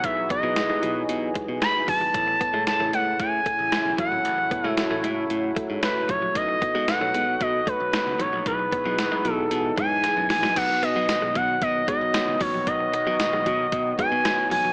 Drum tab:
CC |----------------|----------------|----------------|----------------|
HH |x-x-x-x-x-x-x-o-|x-x-x-x-x-x-x-x-|x-x-x-x-x-x-x-x-|x-x-x-x-x-x-x-x-|
TB |----------------|----------------|----------------|----------------|
SD |----o-------o---|----o-------o---|----o-------o---|----o-------o---|
BD |o-o-------o---o-|o-o-----o-o---o-|--o-------o---o-|o-o-----o-o-----|

CC |----------------|x---------------|----------------|
HH |x-x-x-x-x-x-x-o-|x-x-x-x-x-x-x-o-|x-x-x-x-x-x-x-o-|
TB |----------------|----x-------x---|----x-------x---|
SD |----o-------o-oo|----o-------o---|----o-------o---|
BD |o-o-------o-----|o-----o-o-o---o-|o-----o-o-o-----|